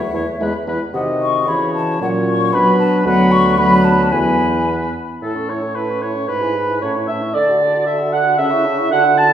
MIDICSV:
0, 0, Header, 1, 6, 480
1, 0, Start_track
1, 0, Key_signature, 3, "major"
1, 0, Tempo, 530973
1, 851, Time_signature, 2, 2, 24, 8
1, 3240, Tempo, 544465
1, 5160, Tempo, 525394
1, 8420, End_track
2, 0, Start_track
2, 0, Title_t, "Flute"
2, 0, Program_c, 0, 73
2, 0, Note_on_c, 0, 76, 101
2, 588, Note_off_c, 0, 76, 0
2, 848, Note_on_c, 0, 78, 82
2, 903, Note_off_c, 0, 78, 0
2, 1098, Note_on_c, 0, 85, 98
2, 1338, Note_on_c, 0, 83, 84
2, 1351, Note_off_c, 0, 85, 0
2, 1564, Note_off_c, 0, 83, 0
2, 1570, Note_on_c, 0, 81, 97
2, 1807, Note_off_c, 0, 81, 0
2, 1827, Note_on_c, 0, 78, 95
2, 1881, Note_off_c, 0, 78, 0
2, 2065, Note_on_c, 0, 85, 98
2, 2287, Note_on_c, 0, 83, 110
2, 2300, Note_off_c, 0, 85, 0
2, 2516, Note_off_c, 0, 83, 0
2, 2522, Note_on_c, 0, 81, 113
2, 2755, Note_off_c, 0, 81, 0
2, 2772, Note_on_c, 0, 78, 116
2, 2996, Note_on_c, 0, 85, 121
2, 3010, Note_off_c, 0, 78, 0
2, 3234, Note_on_c, 0, 83, 115
2, 3247, Note_off_c, 0, 85, 0
2, 3471, Note_on_c, 0, 81, 112
2, 3484, Note_off_c, 0, 83, 0
2, 3711, Note_on_c, 0, 80, 97
2, 3724, Note_off_c, 0, 81, 0
2, 4441, Note_off_c, 0, 80, 0
2, 4668, Note_on_c, 0, 81, 43
2, 4800, Note_on_c, 0, 85, 37
2, 4814, Note_off_c, 0, 81, 0
2, 4929, Note_on_c, 0, 81, 39
2, 4942, Note_off_c, 0, 85, 0
2, 5043, Note_on_c, 0, 85, 42
2, 5056, Note_off_c, 0, 81, 0
2, 5149, Note_off_c, 0, 85, 0
2, 5154, Note_on_c, 0, 81, 45
2, 5287, Note_on_c, 0, 85, 41
2, 5300, Note_off_c, 0, 81, 0
2, 5404, Note_on_c, 0, 81, 46
2, 5418, Note_off_c, 0, 85, 0
2, 5521, Note_on_c, 0, 85, 43
2, 5535, Note_off_c, 0, 81, 0
2, 5632, Note_off_c, 0, 85, 0
2, 5637, Note_on_c, 0, 83, 51
2, 5764, Note_on_c, 0, 80, 45
2, 5778, Note_off_c, 0, 83, 0
2, 5898, Note_on_c, 0, 83, 43
2, 5912, Note_off_c, 0, 80, 0
2, 6016, Note_on_c, 0, 80, 47
2, 6030, Note_off_c, 0, 83, 0
2, 6130, Note_off_c, 0, 80, 0
2, 6136, Note_on_c, 0, 81, 49
2, 6254, Note_on_c, 0, 85, 51
2, 6268, Note_off_c, 0, 81, 0
2, 6380, Note_on_c, 0, 81, 53
2, 6394, Note_off_c, 0, 85, 0
2, 6494, Note_on_c, 0, 85, 50
2, 6508, Note_off_c, 0, 81, 0
2, 6611, Note_off_c, 0, 85, 0
2, 6625, Note_on_c, 0, 81, 59
2, 6750, Note_on_c, 0, 78, 53
2, 6763, Note_off_c, 0, 81, 0
2, 6866, Note_on_c, 0, 81, 56
2, 6879, Note_off_c, 0, 78, 0
2, 6977, Note_on_c, 0, 78, 58
2, 6991, Note_off_c, 0, 81, 0
2, 7079, Note_off_c, 0, 78, 0
2, 7085, Note_on_c, 0, 81, 63
2, 7195, Note_on_c, 0, 78, 59
2, 7209, Note_off_c, 0, 81, 0
2, 7309, Note_on_c, 0, 81, 63
2, 7323, Note_off_c, 0, 78, 0
2, 7434, Note_on_c, 0, 78, 61
2, 7448, Note_off_c, 0, 81, 0
2, 7553, Note_off_c, 0, 78, 0
2, 7558, Note_on_c, 0, 81, 72
2, 7667, Note_on_c, 0, 85, 65
2, 7681, Note_off_c, 0, 81, 0
2, 7790, Note_on_c, 0, 81, 63
2, 7803, Note_off_c, 0, 85, 0
2, 7915, Note_on_c, 0, 85, 67
2, 7929, Note_off_c, 0, 81, 0
2, 8039, Note_off_c, 0, 85, 0
2, 8043, Note_on_c, 0, 81, 74
2, 8166, Note_on_c, 0, 78, 71
2, 8179, Note_off_c, 0, 81, 0
2, 8288, Note_on_c, 0, 81, 70
2, 8302, Note_off_c, 0, 78, 0
2, 8414, Note_off_c, 0, 81, 0
2, 8420, End_track
3, 0, Start_track
3, 0, Title_t, "Oboe"
3, 0, Program_c, 1, 68
3, 135, Note_on_c, 1, 73, 61
3, 241, Note_off_c, 1, 73, 0
3, 379, Note_on_c, 1, 71, 62
3, 485, Note_off_c, 1, 71, 0
3, 616, Note_on_c, 1, 71, 61
3, 723, Note_off_c, 1, 71, 0
3, 858, Note_on_c, 1, 75, 66
3, 1343, Note_on_c, 1, 73, 71
3, 1356, Note_off_c, 1, 75, 0
3, 1818, Note_off_c, 1, 73, 0
3, 1822, Note_on_c, 1, 73, 72
3, 2298, Note_on_c, 1, 71, 74
3, 2311, Note_off_c, 1, 73, 0
3, 2765, Note_off_c, 1, 71, 0
3, 2773, Note_on_c, 1, 71, 97
3, 3211, Note_off_c, 1, 71, 0
3, 3237, Note_on_c, 1, 71, 94
3, 3705, Note_off_c, 1, 71, 0
3, 3710, Note_on_c, 1, 71, 79
3, 4426, Note_off_c, 1, 71, 0
3, 4686, Note_on_c, 1, 69, 54
3, 4923, Note_on_c, 1, 73, 54
3, 4936, Note_off_c, 1, 69, 0
3, 5146, Note_on_c, 1, 71, 55
3, 5159, Note_off_c, 1, 73, 0
3, 5394, Note_on_c, 1, 73, 63
3, 5408, Note_off_c, 1, 71, 0
3, 5630, Note_off_c, 1, 73, 0
3, 5636, Note_on_c, 1, 71, 69
3, 6116, Note_off_c, 1, 71, 0
3, 6120, Note_on_c, 1, 73, 64
3, 6230, Note_off_c, 1, 73, 0
3, 6356, Note_on_c, 1, 76, 77
3, 6600, Note_on_c, 1, 74, 83
3, 6614, Note_off_c, 1, 76, 0
3, 7070, Note_off_c, 1, 74, 0
3, 7076, Note_on_c, 1, 76, 79
3, 7320, Note_on_c, 1, 78, 89
3, 7334, Note_off_c, 1, 76, 0
3, 7552, Note_on_c, 1, 76, 103
3, 7565, Note_off_c, 1, 78, 0
3, 8026, Note_off_c, 1, 76, 0
3, 8031, Note_on_c, 1, 78, 85
3, 8141, Note_off_c, 1, 78, 0
3, 8276, Note_on_c, 1, 81, 100
3, 8420, Note_off_c, 1, 81, 0
3, 8420, End_track
4, 0, Start_track
4, 0, Title_t, "Clarinet"
4, 0, Program_c, 2, 71
4, 113, Note_on_c, 2, 64, 62
4, 224, Note_off_c, 2, 64, 0
4, 360, Note_on_c, 2, 64, 63
4, 470, Note_off_c, 2, 64, 0
4, 605, Note_on_c, 2, 64, 64
4, 715, Note_off_c, 2, 64, 0
4, 843, Note_on_c, 2, 66, 71
4, 1810, Note_on_c, 2, 61, 73
4, 1823, Note_off_c, 2, 66, 0
4, 2283, Note_on_c, 2, 62, 74
4, 2296, Note_off_c, 2, 61, 0
4, 2758, Note_off_c, 2, 62, 0
4, 2762, Note_on_c, 2, 59, 93
4, 3205, Note_off_c, 2, 59, 0
4, 3234, Note_on_c, 2, 59, 89
4, 3707, Note_off_c, 2, 59, 0
4, 3719, Note_on_c, 2, 59, 80
4, 4431, Note_off_c, 2, 59, 0
4, 4679, Note_on_c, 2, 69, 60
4, 4917, Note_on_c, 2, 73, 60
4, 4930, Note_off_c, 2, 69, 0
4, 5155, Note_on_c, 2, 71, 62
4, 5168, Note_off_c, 2, 73, 0
4, 5391, Note_on_c, 2, 73, 69
4, 5405, Note_off_c, 2, 71, 0
4, 5633, Note_on_c, 2, 71, 72
4, 5647, Note_off_c, 2, 73, 0
4, 6118, Note_off_c, 2, 71, 0
4, 6123, Note_on_c, 2, 73, 74
4, 6362, Note_off_c, 2, 73, 0
4, 6373, Note_on_c, 2, 76, 80
4, 6480, Note_off_c, 2, 76, 0
4, 6608, Note_on_c, 2, 74, 96
4, 7076, Note_off_c, 2, 74, 0
4, 7083, Note_on_c, 2, 76, 89
4, 7190, Note_off_c, 2, 76, 0
4, 7320, Note_on_c, 2, 78, 101
4, 7551, Note_off_c, 2, 78, 0
4, 7557, Note_on_c, 2, 76, 110
4, 8030, Note_off_c, 2, 76, 0
4, 8047, Note_on_c, 2, 78, 107
4, 8281, Note_on_c, 2, 81, 109
4, 8295, Note_off_c, 2, 78, 0
4, 8420, Note_off_c, 2, 81, 0
4, 8420, End_track
5, 0, Start_track
5, 0, Title_t, "French horn"
5, 0, Program_c, 3, 60
5, 132, Note_on_c, 3, 57, 63
5, 239, Note_off_c, 3, 57, 0
5, 369, Note_on_c, 3, 56, 82
5, 477, Note_off_c, 3, 56, 0
5, 606, Note_on_c, 3, 52, 73
5, 715, Note_off_c, 3, 52, 0
5, 865, Note_on_c, 3, 51, 69
5, 1342, Note_on_c, 3, 52, 72
5, 1356, Note_off_c, 3, 51, 0
5, 1819, Note_on_c, 3, 54, 74
5, 1833, Note_off_c, 3, 52, 0
5, 2292, Note_off_c, 3, 54, 0
5, 2304, Note_on_c, 3, 54, 84
5, 2759, Note_off_c, 3, 54, 0
5, 2774, Note_on_c, 3, 54, 99
5, 3211, Note_off_c, 3, 54, 0
5, 3247, Note_on_c, 3, 54, 99
5, 3721, Note_on_c, 3, 52, 83
5, 3734, Note_off_c, 3, 54, 0
5, 4446, Note_off_c, 3, 52, 0
5, 4694, Note_on_c, 3, 64, 47
5, 4798, Note_on_c, 3, 61, 42
5, 4811, Note_off_c, 3, 64, 0
5, 4925, Note_on_c, 3, 64, 43
5, 4938, Note_off_c, 3, 61, 0
5, 5037, Note_on_c, 3, 61, 40
5, 5050, Note_off_c, 3, 64, 0
5, 5143, Note_off_c, 3, 61, 0
5, 5149, Note_on_c, 3, 64, 42
5, 5269, Note_on_c, 3, 61, 39
5, 5283, Note_off_c, 3, 64, 0
5, 5395, Note_on_c, 3, 64, 42
5, 5409, Note_off_c, 3, 61, 0
5, 5520, Note_on_c, 3, 61, 43
5, 5534, Note_off_c, 3, 64, 0
5, 5631, Note_off_c, 3, 61, 0
5, 5637, Note_on_c, 3, 68, 52
5, 5757, Note_on_c, 3, 64, 48
5, 5770, Note_off_c, 3, 68, 0
5, 5884, Note_on_c, 3, 68, 50
5, 5897, Note_off_c, 3, 64, 0
5, 6010, Note_on_c, 3, 64, 45
5, 6024, Note_off_c, 3, 68, 0
5, 6127, Note_off_c, 3, 64, 0
5, 6133, Note_on_c, 3, 61, 51
5, 6262, Note_on_c, 3, 64, 46
5, 6275, Note_off_c, 3, 61, 0
5, 6374, Note_on_c, 3, 61, 52
5, 6388, Note_off_c, 3, 64, 0
5, 6490, Note_on_c, 3, 64, 50
5, 6504, Note_off_c, 3, 61, 0
5, 6606, Note_off_c, 3, 64, 0
5, 6611, Note_on_c, 3, 69, 61
5, 6743, Note_on_c, 3, 66, 54
5, 6757, Note_off_c, 3, 69, 0
5, 6860, Note_on_c, 3, 69, 57
5, 6874, Note_off_c, 3, 66, 0
5, 6981, Note_on_c, 3, 66, 56
5, 6995, Note_off_c, 3, 69, 0
5, 7087, Note_off_c, 3, 66, 0
5, 7093, Note_on_c, 3, 69, 68
5, 7219, Note_on_c, 3, 66, 58
5, 7232, Note_off_c, 3, 69, 0
5, 7338, Note_on_c, 3, 69, 60
5, 7351, Note_off_c, 3, 66, 0
5, 7445, Note_on_c, 3, 66, 60
5, 7458, Note_off_c, 3, 69, 0
5, 7559, Note_off_c, 3, 66, 0
5, 7564, Note_on_c, 3, 61, 70
5, 7688, Note_on_c, 3, 64, 62
5, 7702, Note_off_c, 3, 61, 0
5, 7812, Note_on_c, 3, 61, 72
5, 7826, Note_off_c, 3, 64, 0
5, 7929, Note_on_c, 3, 64, 64
5, 7942, Note_off_c, 3, 61, 0
5, 8039, Note_off_c, 3, 64, 0
5, 8044, Note_on_c, 3, 66, 76
5, 8155, Note_on_c, 3, 62, 66
5, 8168, Note_off_c, 3, 66, 0
5, 8274, Note_on_c, 3, 66, 70
5, 8288, Note_off_c, 3, 62, 0
5, 8390, Note_on_c, 3, 62, 66
5, 8403, Note_off_c, 3, 66, 0
5, 8420, Note_off_c, 3, 62, 0
5, 8420, End_track
6, 0, Start_track
6, 0, Title_t, "Bassoon"
6, 0, Program_c, 4, 70
6, 124, Note_on_c, 4, 40, 71
6, 233, Note_off_c, 4, 40, 0
6, 369, Note_on_c, 4, 40, 72
6, 478, Note_off_c, 4, 40, 0
6, 606, Note_on_c, 4, 40, 68
6, 716, Note_off_c, 4, 40, 0
6, 848, Note_on_c, 4, 48, 86
6, 1330, Note_on_c, 4, 49, 80
6, 1344, Note_off_c, 4, 48, 0
6, 1812, Note_off_c, 4, 49, 0
6, 1816, Note_on_c, 4, 46, 81
6, 2281, Note_off_c, 4, 46, 0
6, 2289, Note_on_c, 4, 47, 89
6, 2751, Note_off_c, 4, 47, 0
6, 2762, Note_on_c, 4, 38, 93
6, 3723, Note_on_c, 4, 40, 80
6, 3736, Note_off_c, 4, 38, 0
6, 4447, Note_off_c, 4, 40, 0
6, 4685, Note_on_c, 4, 45, 52
6, 5606, Note_off_c, 4, 45, 0
6, 5641, Note_on_c, 4, 44, 53
6, 6118, Note_off_c, 4, 44, 0
6, 6133, Note_on_c, 4, 45, 62
6, 6602, Note_off_c, 4, 45, 0
6, 6613, Note_on_c, 4, 50, 72
6, 7567, Note_on_c, 4, 49, 81
6, 7581, Note_off_c, 4, 50, 0
6, 8042, Note_on_c, 4, 50, 91
6, 8056, Note_off_c, 4, 49, 0
6, 8420, Note_off_c, 4, 50, 0
6, 8420, End_track
0, 0, End_of_file